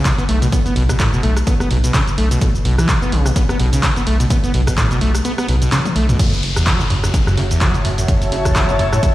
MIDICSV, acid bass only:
0, 0, Header, 1, 2, 480
1, 0, Start_track
1, 0, Key_signature, 3, "minor"
1, 0, Tempo, 472441
1, 532, Time_signature, 4, 2, 24, 8
1, 9293, End_track
2, 0, Start_track
2, 0, Title_t, "Acid bass"
2, 0, Program_c, 0, 38
2, 51, Note_on_c, 0, 47, 79
2, 126, Note_off_c, 0, 47, 0
2, 186, Note_on_c, 0, 59, 78
2, 245, Note_off_c, 0, 59, 0
2, 291, Note_on_c, 0, 57, 76
2, 403, Note_off_c, 0, 57, 0
2, 426, Note_on_c, 0, 47, 103
2, 484, Note_off_c, 0, 47, 0
2, 530, Note_on_c, 0, 59, 84
2, 606, Note_off_c, 0, 59, 0
2, 666, Note_on_c, 0, 59, 77
2, 753, Note_off_c, 0, 59, 0
2, 771, Note_on_c, 0, 47, 76
2, 846, Note_off_c, 0, 47, 0
2, 905, Note_on_c, 0, 47, 78
2, 993, Note_off_c, 0, 47, 0
2, 1011, Note_on_c, 0, 45, 81
2, 1123, Note_off_c, 0, 45, 0
2, 1146, Note_on_c, 0, 47, 81
2, 1234, Note_off_c, 0, 47, 0
2, 1251, Note_on_c, 0, 57, 75
2, 1363, Note_off_c, 0, 57, 0
2, 1493, Note_on_c, 0, 59, 86
2, 1567, Note_off_c, 0, 59, 0
2, 1628, Note_on_c, 0, 59, 73
2, 1715, Note_off_c, 0, 59, 0
2, 1734, Note_on_c, 0, 47, 74
2, 1807, Note_off_c, 0, 47, 0
2, 1868, Note_on_c, 0, 47, 77
2, 1955, Note_off_c, 0, 47, 0
2, 1973, Note_on_c, 0, 49, 96
2, 2047, Note_off_c, 0, 49, 0
2, 2214, Note_on_c, 0, 57, 73
2, 2325, Note_off_c, 0, 57, 0
2, 2348, Note_on_c, 0, 47, 76
2, 2435, Note_off_c, 0, 47, 0
2, 2453, Note_on_c, 0, 47, 85
2, 2527, Note_off_c, 0, 47, 0
2, 2693, Note_on_c, 0, 47, 82
2, 2804, Note_off_c, 0, 47, 0
2, 2829, Note_on_c, 0, 52, 103
2, 2933, Note_on_c, 0, 47, 79
2, 2949, Note_off_c, 0, 52, 0
2, 3007, Note_off_c, 0, 47, 0
2, 3068, Note_on_c, 0, 59, 77
2, 3173, Note_on_c, 0, 49, 75
2, 3189, Note_off_c, 0, 59, 0
2, 3308, Note_on_c, 0, 47, 103
2, 3323, Note_off_c, 0, 49, 0
2, 3366, Note_off_c, 0, 47, 0
2, 3413, Note_on_c, 0, 59, 84
2, 3487, Note_off_c, 0, 59, 0
2, 3549, Note_on_c, 0, 59, 77
2, 3635, Note_off_c, 0, 59, 0
2, 3653, Note_on_c, 0, 47, 79
2, 3764, Note_off_c, 0, 47, 0
2, 3787, Note_on_c, 0, 49, 77
2, 3893, Note_on_c, 0, 47, 81
2, 3908, Note_off_c, 0, 49, 0
2, 3967, Note_off_c, 0, 47, 0
2, 4029, Note_on_c, 0, 59, 82
2, 4086, Note_off_c, 0, 59, 0
2, 4134, Note_on_c, 0, 57, 74
2, 4244, Note_off_c, 0, 57, 0
2, 4268, Note_on_c, 0, 47, 100
2, 4326, Note_off_c, 0, 47, 0
2, 4373, Note_on_c, 0, 59, 83
2, 4447, Note_off_c, 0, 59, 0
2, 4509, Note_on_c, 0, 59, 75
2, 4595, Note_off_c, 0, 59, 0
2, 4614, Note_on_c, 0, 47, 77
2, 4688, Note_off_c, 0, 47, 0
2, 4748, Note_on_c, 0, 47, 77
2, 4835, Note_off_c, 0, 47, 0
2, 4853, Note_on_c, 0, 45, 82
2, 4964, Note_off_c, 0, 45, 0
2, 4989, Note_on_c, 0, 47, 79
2, 5075, Note_off_c, 0, 47, 0
2, 5094, Note_on_c, 0, 57, 77
2, 5205, Note_off_c, 0, 57, 0
2, 5332, Note_on_c, 0, 59, 87
2, 5407, Note_off_c, 0, 59, 0
2, 5468, Note_on_c, 0, 59, 79
2, 5554, Note_off_c, 0, 59, 0
2, 5574, Note_on_c, 0, 47, 78
2, 5647, Note_off_c, 0, 47, 0
2, 5709, Note_on_c, 0, 47, 78
2, 5795, Note_off_c, 0, 47, 0
2, 5813, Note_on_c, 0, 49, 99
2, 5887, Note_off_c, 0, 49, 0
2, 6053, Note_on_c, 0, 57, 74
2, 6164, Note_off_c, 0, 57, 0
2, 6189, Note_on_c, 0, 47, 78
2, 6275, Note_off_c, 0, 47, 0
2, 6296, Note_on_c, 0, 42, 107
2, 6369, Note_off_c, 0, 42, 0
2, 6669, Note_on_c, 0, 40, 78
2, 6775, Note_on_c, 0, 54, 84
2, 6790, Note_off_c, 0, 40, 0
2, 6909, Note_on_c, 0, 43, 78
2, 6924, Note_off_c, 0, 54, 0
2, 6966, Note_off_c, 0, 43, 0
2, 7015, Note_on_c, 0, 42, 105
2, 7058, Note_off_c, 0, 42, 0
2, 7151, Note_on_c, 0, 42, 106
2, 7207, Note_off_c, 0, 42, 0
2, 7255, Note_on_c, 0, 42, 105
2, 7328, Note_off_c, 0, 42, 0
2, 7389, Note_on_c, 0, 42, 107
2, 7475, Note_off_c, 0, 42, 0
2, 7495, Note_on_c, 0, 49, 82
2, 7539, Note_off_c, 0, 49, 0
2, 7629, Note_on_c, 0, 40, 76
2, 7735, Note_on_c, 0, 54, 83
2, 7750, Note_off_c, 0, 40, 0
2, 7869, Note_on_c, 0, 43, 81
2, 7884, Note_off_c, 0, 54, 0
2, 7926, Note_off_c, 0, 43, 0
2, 7975, Note_on_c, 0, 42, 100
2, 8018, Note_off_c, 0, 42, 0
2, 8111, Note_on_c, 0, 42, 101
2, 8167, Note_off_c, 0, 42, 0
2, 8215, Note_on_c, 0, 42, 106
2, 8288, Note_off_c, 0, 42, 0
2, 8455, Note_on_c, 0, 49, 78
2, 8498, Note_off_c, 0, 49, 0
2, 8589, Note_on_c, 0, 40, 79
2, 8693, Note_on_c, 0, 54, 85
2, 8708, Note_off_c, 0, 40, 0
2, 8830, Note_on_c, 0, 43, 79
2, 8845, Note_off_c, 0, 54, 0
2, 8887, Note_off_c, 0, 43, 0
2, 8934, Note_on_c, 0, 42, 108
2, 8978, Note_off_c, 0, 42, 0
2, 9069, Note_on_c, 0, 45, 100
2, 9126, Note_off_c, 0, 45, 0
2, 9174, Note_on_c, 0, 42, 101
2, 9248, Note_off_c, 0, 42, 0
2, 9293, End_track
0, 0, End_of_file